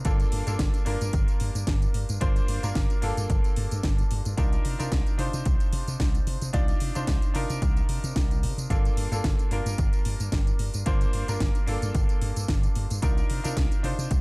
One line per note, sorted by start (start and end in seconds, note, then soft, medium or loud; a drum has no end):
0.05 0.23 G1 loud
0.05 0.43 A#3 medium
0.05 0.43 D4 medium
0.05 0.44 F4 medium
0.05 0.44 A4 loud
0.05 kick loud
0.05 closed hi-hat medium
0.05 tambourine medium
0.20 closed hi-hat soft
0.20 tambourine soft
0.32 0.42 G2 medium
0.32 open hi-hat loud
0.47 0.55 G2 loud
0.47 0.83 A#3 medium
0.47 0.83 D4 medium
0.47 0.83 F4 medium
0.47 0.84 A4 medium
0.47 closed hi-hat soft
0.47 tambourine medium
0.59 0.69 G1 loud
0.59 kick loud
0.59 snare loud
0.59 closed hi-hat loud
0.59 tambourine medium
0.74 closed hi-hat soft
0.74 tambourine soft
0.85 0.96 G2 medium
0.85 2.18 A#3 medium
0.85 2.18 D4 medium
0.85 2.19 F4 medium
0.85 2.19 A#4 medium
0.85 open hi-hat medium
1.01 1.09 G2 medium
1.01 closed hi-hat soft
1.01 tambourine medium
1.13 1.23 G1 medium
1.13 kick loud
1.13 closed hi-hat medium
1.13 tambourine medium
1.28 closed hi-hat soft
1.28 tambourine soft
1.40 1.50 G2 loud
1.40 open hi-hat loud
1.55 1.63 G2 medium
1.55 closed hi-hat soft
1.55 tambourine medium
1.67 1.85 G1 medium
1.67 kick loud
1.67 snare loud
1.67 closed hi-hat loud
1.67 tambourine medium
1.82 closed hi-hat soft
1.82 tambourine soft
1.94 2.04 G2 loud
1.94 open hi-hat medium
2.09 2.17 G2 medium
2.09 closed hi-hat soft
2.09 tambourine medium
2.21 2.39 G1 loud
2.21 2.59 A#3 loud
2.21 2.59 D4 loud
2.21 2.60 F4 medium
2.21 2.60 C5 loud
2.21 kick loud
2.21 closed hi-hat medium
2.21 tambourine medium
2.36 closed hi-hat soft
2.36 tambourine soft
2.48 2.58 G2 medium
2.48 open hi-hat loud
2.63 2.71 G2 loud
2.63 2.99 A#3 medium
2.63 3.00 D4 medium
2.63 3.00 F4 medium
2.63 3.00 A#4 medium
2.63 closed hi-hat soft
2.63 tambourine medium
2.75 2.85 G1 loud
2.75 kick loud
2.75 snare loud
2.75 closed hi-hat medium
2.75 tambourine medium
2.90 closed hi-hat soft
2.90 tambourine soft
3.02 3.12 G2 medium
3.02 4.34 A#3 medium
3.02 4.35 D4 medium
3.02 4.35 F4 medium
3.02 4.35 A4 loud
3.02 open hi-hat medium
3.17 3.25 G2 medium
3.17 closed hi-hat soft
3.17 tambourine medium
3.30 3.39 G1 medium
3.30 kick loud
3.30 closed hi-hat medium
3.30 tambourine medium
3.44 closed hi-hat soft
3.44 tambourine soft
3.56 3.66 G2 loud
3.56 open hi-hat loud
3.71 3.80 G2 medium
3.71 closed hi-hat soft
3.71 tambourine medium
3.83 4.02 G1 medium
3.83 kick loud
3.83 snare loud
3.83 closed hi-hat medium
3.83 tambourine medium
3.99 closed hi-hat soft
3.99 tambourine soft
4.11 4.20 G2 loud
4.11 open hi-hat loud
4.25 4.34 G2 medium
4.25 closed hi-hat soft
4.25 tambourine medium
4.37 4.56 C2 loud
4.37 4.76 D4 medium
4.37 4.76 D#4 medium
4.37 4.76 F4 medium
4.37 4.76 A#4 loud
4.37 kick loud
4.37 closed hi-hat medium
4.37 tambourine medium
4.53 closed hi-hat soft
4.53 tambourine soft
4.65 4.75 C3 medium
4.65 open hi-hat loud
4.79 4.88 C3 loud
4.79 5.16 D4 medium
4.79 5.16 D#4 medium
4.79 5.16 F4 medium
4.79 5.16 A#4 medium
4.79 closed hi-hat soft
4.79 tambourine medium
4.92 5.01 C2 loud
4.92 kick loud
4.92 snare loud
4.92 closed hi-hat medium
4.92 tambourine medium
5.07 closed hi-hat soft
5.07 tambourine soft
5.18 5.28 C3 medium
5.18 6.51 D4 medium
5.18 6.51 D#4 medium
5.18 6.51 F4 medium
5.18 6.52 C5 medium
5.18 open hi-hat loud
5.33 5.41 C3 medium
5.33 closed hi-hat soft
5.33 tambourine medium
5.45 5.55 C2 medium
5.45 kick loud
5.45 closed hi-hat medium
5.45 tambourine medium
5.60 closed hi-hat soft
5.60 tambourine soft
5.73 5.82 C3 loud
5.73 open hi-hat loud
5.88 5.96 C3 medium
5.88 closed hi-hat soft
5.88 tambourine medium
6.00 6.18 C2 medium
6.00 kick loud
6.00 snare loud
6.00 closed hi-hat medium
6.00 tambourine medium
6.15 closed hi-hat soft
6.15 tambourine soft
6.27 6.36 C3 loud
6.27 open hi-hat loud
6.41 6.50 C3 medium
6.41 closed hi-hat soft
6.41 tambourine medium
6.53 6.72 C2 loud
6.53 6.92 D4 loud
6.53 6.92 D#4 medium
6.53 6.92 F4 medium
6.53 6.92 D5 loud
6.53 kick loud
6.53 closed hi-hat medium
6.53 tambourine medium
6.68 closed hi-hat soft
6.68 tambourine soft
6.80 6.91 C3 medium
6.80 open hi-hat loud
6.95 7.04 C3 loud
6.95 7.32 D4 medium
6.95 7.32 D#4 medium
6.95 7.32 F4 medium
6.95 7.32 C5 medium
6.95 closed hi-hat soft
6.95 tambourine medium
7.07 7.17 C2 loud
7.07 kick loud
7.07 snare loud
7.07 closed hi-hat medium
7.07 tambourine medium
7.22 closed hi-hat soft
7.22 tambourine soft
7.34 7.45 C3 medium
7.34 8.67 D4 medium
7.34 8.67 D#4 medium
7.34 8.67 F4 medium
7.34 8.68 A#4 loud
7.34 open hi-hat loud
7.50 7.58 C3 medium
7.50 closed hi-hat soft
7.50 tambourine medium
7.62 7.80 C2 medium
7.62 kick loud
7.62 closed hi-hat medium
7.62 tambourine medium
7.77 closed hi-hat soft
7.77 tambourine soft
7.89 7.98 C3 medium
7.89 open hi-hat loud
8.04 8.12 C3 loud
8.04 closed hi-hat soft
8.04 tambourine medium
8.16 8.45 C2 loud
8.16 kick loud
8.16 snare loud
8.16 closed hi-hat medium
8.16 tambourine medium
8.31 closed hi-hat soft
8.31 tambourine soft
8.43 8.52 C3 loud
8.43 open hi-hat loud
8.58 8.66 C3 medium
8.58 closed hi-hat soft
8.58 tambourine medium
8.70 8.88 G1 loud
8.70 9.08 A#3 medium
8.70 9.09 D4 medium
8.70 9.09 F4 medium
8.70 9.09 A4 loud
8.70 kick loud
8.70 closed hi-hat medium
8.70 tambourine medium
8.85 closed hi-hat soft
8.85 tambourine soft
8.97 9.06 G2 medium
8.97 open hi-hat loud
9.11 9.20 G2 loud
9.11 9.48 A#3 medium
9.11 9.48 D4 medium
9.11 9.48 F4 medium
9.11 9.49 A4 medium
9.11 closed hi-hat soft
9.11 tambourine medium
9.24 9.34 G1 loud
9.24 kick loud
9.24 snare loud
9.24 closed hi-hat medium
9.24 tambourine medium
9.39 closed hi-hat soft
9.39 tambourine soft
9.51 9.61 G2 medium
9.51 10.83 A#3 medium
9.51 10.84 D4 medium
9.51 10.84 F4 medium
9.51 10.84 A#4 medium
9.51 open hi-hat medium
9.66 9.74 G2 medium
9.66 closed hi-hat soft
9.66 tambourine medium
9.78 9.88 G1 medium
9.78 kick loud
9.78 closed hi-hat medium
9.78 tambourine medium
9.93 closed hi-hat soft
9.93 tambourine soft
10.05 10.15 G2 loud
10.05 open hi-hat loud
10.20 10.28 G2 medium
10.20 closed hi-hat soft
10.20 tambourine medium
10.32 10.50 G1 medium
10.32 kick loud
10.32 snare loud
10.32 closed hi-hat medium
10.32 tambourine medium
10.47 closed hi-hat soft
10.47 tambourine soft
10.59 10.69 G2 loud
10.59 open hi-hat medium
10.74 10.82 G2 medium
10.74 closed hi-hat soft
10.74 tambourine medium
10.86 11.05 G1 loud
10.86 11.24 A#3 loud
10.86 11.25 D4 medium
10.86 11.25 F4 medium
10.86 11.25 C5 loud
10.86 kick loud
10.86 closed hi-hat medium
10.86 tambourine medium
11.01 closed hi-hat soft
11.01 tambourine soft
11.13 11.23 G2 medium
11.13 open hi-hat loud
11.28 11.36 G2 loud
11.28 11.64 A#3 medium
11.28 11.65 D4 medium
11.28 11.65 F4 medium
11.28 11.65 A#4 medium
11.28 closed hi-hat soft
11.28 tambourine medium
11.40 11.50 G1 loud
11.40 kick loud
11.40 snare loud
11.40 closed hi-hat medium
11.40 tambourine medium
11.55 closed hi-hat soft
11.55 tambourine soft
11.66 11.77 G2 medium
11.66 12.99 A#3 medium
11.66 13.00 D4 medium
11.66 13.00 F4 medium
11.66 13.00 A4 loud
11.66 open hi-hat medium
11.82 11.90 G2 loud
11.82 closed hi-hat soft
11.82 tambourine medium
11.95 12.04 G1 medium
11.95 kick loud
11.95 closed hi-hat medium
11.95 tambourine medium
12.09 closed hi-hat soft
12.09 tambourine soft
12.22 12.31 G2 loud
12.22 open hi-hat loud
12.36 12.44 G2 medium
12.36 closed hi-hat soft
12.36 tambourine medium
12.48 12.67 G1 medium
12.48 kick loud
12.48 snare loud
12.48 closed hi-hat loud
12.48 tambourine medium
12.63 closed hi-hat soft
12.63 tambourine soft
12.75 12.85 G2 loud
12.75 open hi-hat medium
12.90 12.98 G2 medium
12.90 closed hi-hat soft
12.90 tambourine medium
13.02 13.21 C2 loud
13.02 13.41 D4 medium
13.02 13.41 D#4 medium
13.02 13.41 F4 medium
13.02 13.41 A#4 loud
13.02 kick loud
13.02 closed hi-hat loud
13.02 tambourine medium
13.18 closed hi-hat soft
13.18 tambourine soft
13.30 13.39 C3 medium
13.30 open hi-hat loud
13.44 13.53 C3 loud
13.44 13.80 D4 medium
13.44 13.81 D#4 medium
13.44 13.81 F4 medium
13.44 13.81 A#4 medium
13.44 closed hi-hat soft
13.44 tambourine medium
13.57 13.66 C2 loud
13.57 kick loud
13.57 snare loud
13.57 closed hi-hat medium
13.57 tambourine medium
13.72 closed hi-hat soft
13.72 tambourine soft
13.83 13.93 C3 medium
13.83 14.21 D4 medium
13.83 14.21 D#4 medium
13.83 14.21 F4 medium
13.83 14.21 C5 medium
13.83 open hi-hat medium
13.99 14.06 C3 medium
13.99 closed hi-hat soft
13.99 tambourine medium
14.11 14.20 C2 medium
14.11 kick loud
14.11 closed hi-hat medium
14.11 tambourine medium